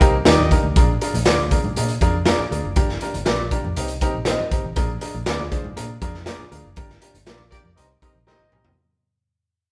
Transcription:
0.01 C2 A#3 C4 D#4 G4 A#4, kick, closed hi-hat
0.25 D#2 A#3 D4 D#4 G4 A#4 D5 D#5, snare, closed hi-hat, high conga
0.38 low conga
0.51 A#3 D4 D#4 G4 A#4, kick, closed hi-hat
0.63 D2
0.76 A#1 D4 F4 G#4 A#4, kick, closed hi-hat, low conga
1.01 D4 F4 G#4 A#4, closed hi-hat
1.14 A#1, closed hi-hat, high conga
1.25 D2 D4 F4 G#4 A#4 D5, snare, closed hi-hat, muted conga
1.39 high conga
1.51 D4 F4 G#4 A#4, kick, closed hi-hat, muted conga
1.64 G#2, low conga
1.76 A#2 D4 F4 G#4 A#4, closed hi-hat, high conga
1.88 closed hi-hat
2.01 F2 D4 F4 G#4 A#4, kick, closed hi-hat, muted conga
2.26 D4 F4 G#4 A#4 D5, snare, closed hi-hat, muted conga, high conga
2.38 low conga
2.51 D2 D4 F4 G#4 A#4, closed hi-hat, muted conga
2.64 F#1
2.76 G1 D4 F4 G4 A#4, kick, closed hi-hat, muted conga, low conga
2.89 snare
3.01 D4 F4 G4 A#4, closed hi-hat, muted conga
3.14 G1, closed hi-hat, high conga
3.26 A#1 D4 F4 G4 A#4 D5, snare, closed hi-hat
3.40 high conga
3.51 D4 F4 G4 A#4, kick, closed hi-hat, muted conga
3.64 F2, low conga
3.76 C2 C4 D#4 G4 A#4, closed hi-hat, high conga
3.88 closed hi-hat
4.01 C4 D#4 G4 A#4, kick, closed hi-hat, muted conga
4.15 A#1
4.25 C4 D#4 G4 A#4 C5 D#5, snare, closed hi-hat, muted conga, high conga
4.39 low conga
4.51 G1 C4 D#4 G4 A#4, kick, closed hi-hat, muted conga
4.64 A1
4.76 A#1 D4 F4 G#4 A#4, kick, closed hi-hat, low conga
5.01 D4 F4 G#4 A#4, closed hi-hat, muted conga
5.14 A#1, high conga
5.26 D2 D4 F4 G#4 A#4 D5, snare, closed hi-hat
5.40 high conga
5.51 D4 F4 G#4 C5, kick, closed hi-hat, muted conga
5.64 G#2, low conga
5.76 A#2 D4 F4 G#4 A#4, closed hi-hat, muted conga, high conga
6.01 F2 D4 F4 G#4 A#4, kick, closed hi-hat
6.14 snare
6.26 D4 F4 G#4 A#4 D5, snare, closed hi-hat, muted conga, high conga
6.39 low conga
6.51 D2 D4 F4 G#4 A#4, closed hi-hat
6.64 F#1
6.76 G1 D4 F4 G4 A#4, kick, closed hi-hat, muted conga, low conga
6.90 snare
7.02 D4 F4 G4 A#4, closed hi-hat
7.14 G1, closed hi-hat, high conga
7.26 A#1 D4 F4 G4 A#4 D5, snare, closed hi-hat
7.40 high conga
7.51 D4 F4 G4 A#4 D5, kick, closed hi-hat, muted conga
7.64 F2, low conga
7.76 C2 C4 D#4 G4 A#4 C5 D#5, closed hi-hat, muted conga, high conga
8.02 C4 D#4 G4 A#4 C5 D#5, muted fingered electric bass stroke, kick, closed hi-hat, muted conga
8.14 A#1
8.27 C4 D#4 G4 A#4 C5 D#5, snare, muted conga, high conga
8.39 G1, low conga
8.51 B1 C4 D#4 G4 A#4, mid tom, muted conga
8.65 floor tom

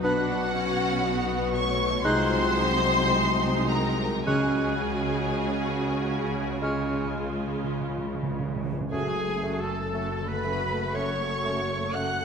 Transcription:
Already playing: F#3 B3 F#4 B4 F#5
0.03 B1 B2 B3 D4 F#4 B4 F#5 F#6
0.29 F#3
0.54 B3 C#4
1.05 B3 F#4
1.30 B4
1.54 A3 C#5 C#6
1.80 F#5
2.04 C2 C3 G#3 D#4 F4 F#4 C5 C6 F#6
2.32 F#3
2.57 G#3 D#4
3.12 D#4 F#4
3.40 G#4
3.68 A#4 D#5 A#5
3.96 F#5
4.25 C#2 C#3 G#3 C#4 F#4 G#4 C#5 G#5 F#6
4.56 G#3
5.15 F#4
6.03 F#5
6.62 C#3 G#3 C#4 F4 C#5 F6
6.72 C#3
6.80 C#3
6.88 C#3
6.92 C#3 G#3
7.05 C#3
7.14 C#3
7.22 C#3 C#4
7.31 C#3
7.40 C#3
7.48 C#3 F4
7.56 C#3
7.64 C#3
7.72 C#3
7.80 C#3
7.89 C#3
7.98 C#3
8.06 C#3 C#5
8.15 C#3
8.23 C#3
8.31 C#3
8.38 C#3 F5
8.48 C#3
8.56 C#3
8.64 C#3 G#5
8.73 C#3
8.81 C#3
8.91 F#1 F#2 F#3 A3 C#4 F#4 G#4 G#5
9.18 A3 A4
9.43 F#3 A3 C#4 F#4
9.61 A4 A5
9.70 A3 A4
9.93 C#3 F#3 A3 C#4 F#4
10.20 D3 A3 A4
10.28 B4 B5
10.44 C#3 F#3 A3 C#4 F#4
10.70 A3 A4
10.94 C#3 F#3 A3 C#4 F#4 C#5 C#6
11.21 A3 A4
11.45 F#3 A3 C#4 F#4
11.71 A3 A4
11.94 C#3 F#3 A3 C#4 F#4 F#5 F#6
12.20 D3 A3 A4

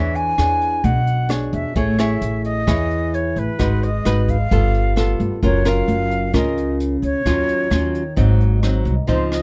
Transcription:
Already playing: E2 E3 D4 G#4 C#5 E5
0.15 G#5, closed hi-hat
0.38 E2 D4 G#4 C#5, cross-stick, closed hi-hat
0.61 closed hi-hat
0.84 B1 B2 F#5, kick, closed hi-hat
1.07 closed hi-hat
1.29 D4 G#4 C#5, cross-stick, closed hi-hat
1.53 E2 E5, closed hi-hat
1.75 A1 A3 E4 G#4 C#5, kick, closed hi-hat
1.99 E4 G#4 C#5 E5, cross-stick, closed hi-hat
2.21 A1, closed hi-hat
2.44 D#5, closed hi-hat
2.67 E2 E3 E4 G#4 C#5, kick, cross-stick, closed hi-hat
2.91 closed hi-hat
3.14 C#5, closed hi-hat
3.36 A1 B4, closed hi-hat
3.59 G#1 G#3 D#4 F#4 B4, kick, cross-stick, closed hi-hat
3.83 D#5, closed hi-hat
4.05 G#1 D#4 F#4 B4, cross-stick, closed hi-hat
4.28 F5, kick, closed hi-hat
4.51 G1 G3 B3 F4 A4, kick, closed hi-hat
4.74 closed hi-hat
4.96 B3 F4 A4, cross-stick, closed hi-hat
5.20 G1, closed hi-hat
5.43 F#1 F#3 C#4 F4 A#4 C#5, kick, closed hi-hat
5.65 C#4 F4 A#4 F5, cross-stick, closed hi-hat
5.88 F#1, closed hi-hat
6.11 closed hi-hat
6.33 C#2 C#3 C#4 F4 A#4 D#5, kick, cross-stick, closed hi-hat
6.57 closed hi-hat
6.80 closed hi-hat
7.02 C#2 C#5, closed hi-hat
7.25 D#2 D#3 F#3 C#4 F4, kick, cross-stick, closed hi-hat
7.49 closed hi-hat
7.70 D#2 F#3 C#4 F4, cross-stick, closed hi-hat
7.95 closed hi-hat
8.16 G#1 G#2 F#3 C4 D#4, kick, closed hi-hat
8.40 closed hi-hat
8.63 F#3 C4 D#4, cross-stick, closed hi-hat
8.85 C2, closed hi-hat
9.07 C#2 C#3 F3 C4 D#4 C5, kick, closed hi-hat
9.32 D#5, cross-stick, closed hi-hat

